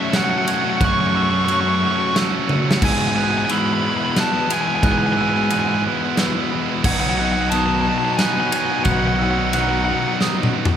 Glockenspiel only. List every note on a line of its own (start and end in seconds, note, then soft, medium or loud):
0.00 0.15 E6 medium
0.15 0.48 F#6 medium
0.48 0.82 G#6 medium
0.82 1.15 F#6 loud
1.16 1.49 E6 medium
1.50 2.16 F#6 medium
2.17 2.83 E6 medium
2.83 3.17 G#6 loud
3.18 3.51 F#6 medium
3.51 4.17 E6 medium
4.17 4.51 F#6 medium
4.51 4.84 G#6 medium
4.84 5.17 F#6 loud
5.17 5.51 E6 medium
5.51 6.18 F#6 medium
6.18 6.85 E6 medium
6.84 7.18 G#6 loud
7.19 7.53 F#6 medium
7.53 8.20 D#6 medium
8.19 8.53 F#6 loud
8.52 8.86 G#6 medium
8.85 9.19 F#6 loud
9.19 9.53 E6 medium
9.53 10.21 F#6 medium
10.21 10.77 D#6 medium